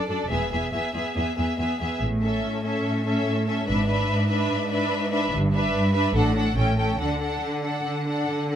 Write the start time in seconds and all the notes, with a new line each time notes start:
0.08 F#2 D4 A4 D5
0.29 E1 E2 B3 G#4 E5
0.51 E2 B3 G#4 E5
0.73 E2 B3 G#4 E5
0.95 E2 B3 G#4 E5
1.16 E2 B3 G#4 E5
1.37 E2 B3 G#4 E5
1.58 E2 B3 G#4 E5
1.80 E2 B3 G#4 E5
2.01 A1 A2
2.23 C#4 A4 E5
2.44 A2
2.64 C#4 A4 E5
2.85 A2
3.06 C#4 A4 E5
3.26 A2
3.47 C#4 A4 E5
3.67 G#1 G#2 D4 B4 E5
3.87 D4 B4 E5
4.09 G#2
4.29 D4 B4 E5
4.50 G#2
4.71 D4 B4 E5
4.91 G#2
5.12 D4 B4 E5
5.33 G1 G2
5.53 D4 B4 E5
5.74 G2
5.94 D4 B4 E5
6.14 A1 A2 D4 A4 F#5
6.36 D4 A4 F#5
6.57 A1 A2 C#4 A4 G5
6.78 C#4 A4 G5
6.99 D2 D3 D4 A4 F#5
7.21 D4 A4 F#5
7.42 D3
7.63 D4 A4 F#5
7.85 D3
8.06 D4 A4 F#5
8.28 D3
8.50 D4 A4 F#5